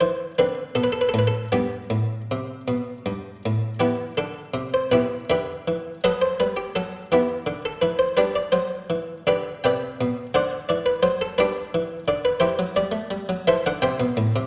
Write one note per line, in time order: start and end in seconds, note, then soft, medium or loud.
0.00 0.31 E3 medium
0.00 0.35 C4 soft
0.00 0.38 C5 medium
0.38 0.69 D3 medium
0.38 1.48 C4 soft
0.38 0.76 B4 medium
0.75 1.06 B2 soft
0.75 0.84 A4 medium
0.84 0.93 B4 medium
0.92 1.01 A4 medium
1.01 1.10 B4 medium
1.09 1.18 A4 medium
1.14 1.44 A2 soft
1.19 1.27 B4 medium
1.27 1.52 A4 medium
1.52 1.83 G2 medium
1.52 3.75 B3 soft
1.52 3.42 G4 medium
1.90 2.21 A2 medium
2.31 2.61 C3 medium
2.68 2.98 B2 medium
3.06 3.36 G2 soft
3.46 3.74 A2 soft
3.80 4.06 E3 medium
3.80 4.14 B3 medium
3.80 4.15 E4 medium
3.80 4.11 G4 medium
4.17 4.44 D3 medium
4.17 4.73 A4 medium
4.54 4.81 C3 medium
4.74 4.93 C5 medium
4.92 5.19 B2 medium
4.92 5.28 E4 medium
4.92 5.28 G4 medium
4.92 5.24 B4 medium
5.30 5.57 D3 medium
5.30 6.00 G4 medium
5.30 6.00 B4 medium
5.30 6.04 E5 medium
5.68 5.94 E3 medium
6.04 6.30 F#3 medium
6.04 6.21 A4 medium
6.04 6.21 B4 medium
6.04 6.22 D#5 medium
6.22 6.40 C5 medium
6.40 6.66 G3 medium
6.40 6.58 B4 medium
6.57 6.75 G4 medium
6.75 7.02 F#3 medium
6.75 7.06 A4 medium
7.12 7.37 E3 medium
7.12 7.62 B3 medium
7.12 7.62 E4 medium
7.12 7.57 G4 medium
7.46 7.72 D3 medium
7.65 7.83 A4 medium
7.82 8.08 E3 medium
7.82 8.00 B4 medium
7.99 8.17 C5 medium
8.17 8.43 G3 medium
8.17 8.34 D4 medium
8.17 8.34 G4 medium
8.17 8.35 B4 medium
8.35 8.53 D5 medium
8.52 8.79 F#3 medium
8.52 9.27 C5 medium
8.90 9.17 E3 medium
9.27 9.54 D3 medium
9.27 9.62 G4 medium
9.27 9.63 B4 medium
9.27 9.65 D5 medium
9.64 9.91 C3 medium
9.64 10.33 B4 medium
9.64 10.33 D5 medium
9.64 10.36 G5 medium
10.01 10.26 B2 medium
10.34 10.60 D3 medium
10.34 10.68 C5 medium
10.34 10.68 D5 medium
10.34 10.70 F#5 medium
10.69 10.95 E3 medium
10.69 10.87 D5 medium
10.86 11.05 B4 medium
11.03 11.29 F#3 medium
11.03 11.22 C5 medium
11.21 11.40 A4 medium
11.38 11.64 G3 medium
11.38 12.05 D4 medium
11.38 12.05 G4 medium
11.38 11.98 B4 medium
11.74 11.99 E3 medium
12.08 12.33 D3 medium
12.08 12.26 D5 medium
12.25 12.43 B4 medium
12.40 12.58 E3 medium
12.40 12.74 E4 medium
12.40 12.74 G4 medium
12.40 12.71 C5 medium
12.59 12.76 F#3 medium
12.76 12.94 G3 medium
12.76 13.36 D5 medium
12.92 13.10 A3 medium
13.11 13.28 G3 medium
13.29 13.46 F#3 medium
13.47 13.64 E3 medium
13.47 13.64 A4 medium
13.47 13.64 C5 medium
13.47 13.65 E5 loud
13.66 13.82 D3 medium
13.66 13.83 F#5 loud
13.82 13.98 C3 medium
13.82 14.47 C5 medium
13.82 14.47 E5 medium
13.82 14.47 G5 loud
14.00 14.16 B2 medium
14.17 14.33 A2 medium
14.36 14.47 C3 medium